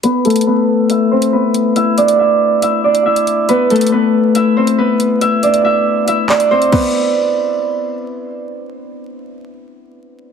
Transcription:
<<
  \new Staff \with { instrumentName = "Harp" } { \time 4/4 \key d \mixolydian \tempo 4 = 139 <b b'>8 <a a'>8 <b b'>4 <e' e''>8 <c' c''>8 <b b'>4 | <e' e''>8 <d' d''>8 <e' e''>4 <e' e''>8 <d' d''>8 <e' e''>4 | <b b'>8 <a a'>8 <b b'>4 <e' e''>8 <c' c''>8 <b b'>4 | <e' e''>8 <d' d''>8 <e' e''>4 <e' e''>8 <d' d''>8 <c' c''>8 b8~ |
b2. r4 | r1 | }
  \new DrumStaff \with { instrumentName = "Drums" } \drummode { \time 4/4 hh8 hh32 hh32 hh32 hh32 r4 hh8. hh16 r8 hh8 | hh8 hh16 hh16 r4 hh8. hh16 r16 hh16 hh8 | hh8 hh32 hh32 hh32 hh32 r4 hh8. hh16 r8 hh8 | hh8 hh16 hh16 r4 hh8 hc16 hh16 r16 hh16 <cymc bd>8 |
r4 r4 r4 r4 | r4 r4 r4 r4 | }
>>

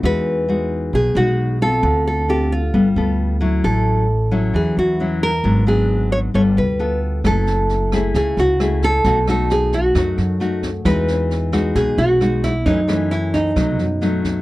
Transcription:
<<
  \new Staff \with { instrumentName = "Nylon-string guitar" } { \time 4/4 \key e \major \tempo 4 = 133 b'2 gis'8 fis'4 a'8~ | a'8 a'8 g'8 f'2 r8 | a'4. r8 gis'8 fis'4 ais'8~ | ais'8 gis'4 cis''8 cis''8 b'4 r8 |
a'2 gis'8 fis'4 a'8~ | a'8 a'8 gis'8 fis'2 r8 | b'2 gis'8 fis'4 e'8 | dis'4 e'8 dis'2 r8 | }
  \new Staff \with { instrumentName = "Nylon-string guitar" } { \time 4/4 \key e \major << { <gis dis' fis'>4 <gis dis' fis'>4 r8 <gis dis' fis'>4 <c' f' a'>8~ | <c' f' a'>4 <c' f' a'>8 r8 <b f' a'>8 <b f' a'>4 <fis cis' e'>8~ | <fis cis' e'>4 r8 <fis cis' e'>4. <fis cis' e'>8 r8 | <fis b d'>8 <fis b d'>4. <b f' a'>8 r8 <b f' a'>4 |
<a e'>4. <a e' gis'>4. <a e' gis'>4 | <a dis' fis'>8 <a dis' fis'>4. <a dis' fis'>4 <a dis' fis'>8 r8 | <gis dis' fis'>4. <gis dis' fis'>4. <gis dis' fis'>8 r8 | <e a cis'>8 <e a cis'>4. <fis a dis'>8 r8 <fis a dis'>4 | } \\ { e2 b,2 | d2 g2 | a,2 e2 | gis,2 g2 |
fis2 cis2 | b,2 fis,2 | e2 b,2 | fis,2 b,2 | } >> }
  \new Staff \with { instrumentName = "Upright bass" } { \clef bass \time 4/4 \key e \major e,2 b,,8 b,,4. | d,2 g,,8 d,4. | a,,2 e,8 e,4. | gis,,2 g,,8 d,4. |
fis,,2 cis,8 cis,4. | b,,2 fis,8 fis,4. | e,2 b,,8 b,,4. | fis,2 b,,8 fis,4. | }
  \new DrumStaff \with { instrumentName = "Drums" } \drummode { \time 4/4 r4 r4 r4 r4 | r4 r4 r4 r4 | r4 r4 r4 r4 | r4 r4 r4 r4 |
<bd ss sn>8 sn8 sn8 <bd ss sn>8 <bd sn>8 sn8 <ss sn>8 <bd sn>8 | <bd sn>8 <ss sn>8 sn8 <bd sn>8 <bd ss sn>8 sn8 sn8 <bd sn>8 | <bd ss sn>8 sn8 sn8 <bd ss sn>8 <bd sn>8 sn8 <ss sn>8 <bd sn>8 | <bd sn>8 <ss sn>8 sn8 <bd sn>8 <bd ss sn>8 sn8 sn8 <bd sn>8 | }
>>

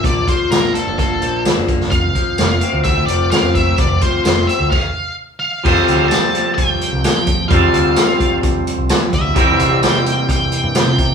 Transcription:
<<
  \new Staff \with { instrumentName = "Lead electric guitar" } { \time 4/4 \key f \major \tempo 4 = 129 d''8 c''8 bes'8 a'8 a'4 r4 | f''2 e''8 d''8 f''8 e''8 | d''8 c''8 c''8 e''8 f''4 r8 f''8~ | f''4 a''4 g''2 |
f''2 r4. e''8~ | e''4 g''4 g''2 | }
  \new Staff \with { instrumentName = "Clean electric guitar" } { \time 4/4 \key f \major r1 | r1 | r1 | <f g c' f' a'>1 |
<f g c' f' a'>1 | <c e g c' e' bes'>1 | }
  \new Staff \with { instrumentName = "Clean electric guitar" } { \time 4/4 \key f \major <bes, f bes d'>8 f8 bes8 d'8 bes8 f8 d'8 bes8 | f,8 f8 a8 c'8 a8 f8 c'8 a8 | f,8 f8 a8 c'8 r2 | <f g c' f' a'>1 |
<f g c' f' a'>1 | <c e g c' e' bes'>1 | }
  \new Staff \with { instrumentName = "Picked electric bass" } { \clef bass \time 4/4 \key f \major bes,,8 r8 bes,,8 r16 g,,8. bes,,8 r16 fis,,8. | f,,8 r8 f,,8 r16 d,8. f,,8 r16 f,8. | f,,8 r8 f,,8 r16 d,16 r2 | f,16 r16 d,8 r4. r16 c,16 r16 f16 f8 |
f,16 r16 d,8 r4. r16 c,16 r16 f16 d,8 | c,16 r16 bes,,8 r4. r16 g,16 r16 c16 c8 | }
  \new DrumStaff \with { instrumentName = "Drums" } \drummode { \time 4/4 <hh bd>8 <hh bd>8 <hh sn tamb>8 hh8 <hh bd>8 hh8 <hh sn tamb>8 <hh bd>16 sn16 | <hh bd>8 <hh bd>8 <hh sn tamb>8 hh8 <hh bd>8 hh8 <hh sn tamb>8 <hh bd>8 | <hh bd>8 <hh bd>8 <hh sn tamb>8 hh8 <cymc bd>4 r4 | <cymc bd>8 hh8 <hh sn tamb>8 hh8 <hh bd>8 hh8 <hh sn tamb>8 <hh bd>8 |
<hh bd>8 hh8 <hh sn tamb>8 <hh bd>8 <hh bd>8 hh8 <hh sn tamb>8 <hh bd>8 | <hh bd>8 hh8 <hh sn tamb>8 hh8 <hh bd>8 hh8 <hh sn tamb>8 <hh bd>8 | }
>>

